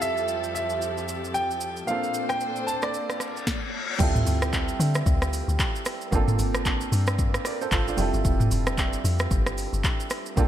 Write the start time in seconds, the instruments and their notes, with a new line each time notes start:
Already playing: string section F2 F3 G4 A4, grand piano G3 C4 E4 F4 A4
0.02 grand piano E5, shaker
0.17 shaker
0.28 shaker
0.44 shaker
0.55 grand piano E5, shaker
0.70 shaker
0.82 shaker
0.97 shaker
1.08 shaker
1.24 shaker
1.34 grand piano G5, shaker
1.51 shaker
1.61 shaker
1.77 shaker
1.86 string section A#2 D4 A4 C5, grand piano A#3 C4 D4 F4 F5, shaker
1.91 grand piano A4
2.03 shaker
2.14 shaker
2.29 grand piano G5, cross-stick, shaker
2.41 shaker
2.56 shaker
2.67 grand piano A5, shaker
2.82 grand piano D5, cross-stick, shaker
2.94 reverse cymbal, shaker
3.10 cross-stick, shaker
3.20 cross-stick, shaker
3.37 shaker
3.47 kick, snare
3.99 log drum bass D2, grand piano G3 C4 E4 F4, kick, crash, shaker
4.03 grand piano A4
4.15 mid tom, shaker
4.27 log drum bass D2, open hi-hat, shaker
4.42 cross-stick, shaker
4.53 kick, clap, shaker
4.68 shaker
4.80 log drum bass D3, open hi-hat, shaker
4.94 cross-stick, shaker
5.06 log drum bass D2, kick, shaker
5.22 cross-stick, shaker
5.33 open hi-hat, shaker
5.48 log drum bass D2, shaker
5.59 kick, clap, shaker
5.75 shaker
5.85 cross-stick, open hi-hat, shaker
6.01 shaker
6.11 log drum bass G1, grand piano A#3 C4 D4 F4, kick, shaker
6.15 grand piano A4
6.28 mid tom, shaker
6.39 log drum bass G1, open hi-hat, shaker
6.54 cross-stick, shaker
6.65 kick, clap, shaker
6.81 shaker
6.92 log drum bass G2, open hi-hat, shaker
7.07 cross-stick, shaker
7.19 kick, shaker
7.34 cross-stick, shaker
7.45 grand piano A#4 D5, cross-stick, open hi-hat, shaker
7.61 grand piano A4 C5, shaker
7.72 log drum bass G1, grand piano F4 A4, kick, clap, shaker
7.88 grand piano D4 F4, shaker
7.97 log drum bass F1, grand piano G3 C4 E4 F4, open hi-hat, shaker
8.01 grand piano A4
8.14 log drum bass G1, shaker
8.25 log drum bass F1, kick, shaker
8.40 mid tom, shaker
8.51 log drum bass F1, open hi-hat, shaker
8.67 cross-stick, shaker
8.78 kick, clap, shaker
8.93 shaker
9.04 log drum bass F2, open hi-hat, shaker
9.19 cross-stick, shaker
9.31 log drum bass G1, kick, shaker
9.46 cross-stick, shaker
9.58 open hi-hat, shaker
9.73 log drum bass G1, shaker
9.84 kick, clap, shaker
10.00 shaker
10.10 cross-stick, open hi-hat, shaker
10.26 shaker
10.36 log drum bass A#1, grand piano A#3 C4 D4 F4, kick, shaker
10.40 grand piano A4